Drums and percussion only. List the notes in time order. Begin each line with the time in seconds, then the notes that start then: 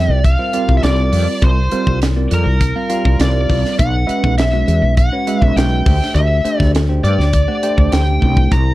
0.24 kick, closed hi-hat
0.53 closed hi-hat
0.69 kick
0.83 snare, closed hi-hat
1.13 open hi-hat
1.42 kick, closed hi-hat
1.71 closed hi-hat
1.87 kick
2.02 snare, closed hi-hat
2.31 closed hi-hat
2.61 kick, closed hi-hat
2.90 closed hi-hat
3.05 kick
3.20 snare, closed hi-hat
3.50 kick, open hi-hat
3.65 snare
3.79 kick, closed hi-hat
4.09 closed hi-hat
4.24 kick
4.38 snare, closed hi-hat
4.68 closed hi-hat
4.97 kick, closed hi-hat
5.27 closed hi-hat
5.42 kick
5.57 snare, closed hi-hat
5.86 kick, open hi-hat
6.03 snare
6.16 closed hi-hat
6.45 closed hi-hat
6.60 kick, snare
6.75 snare, closed hi-hat
7.05 closed hi-hat
7.20 snare
7.33 kick, closed hi-hat
7.63 closed hi-hat
7.78 kick
7.92 snare, closed hi-hat
8.22 kick
8.37 kick
8.51 kick, closed hi-hat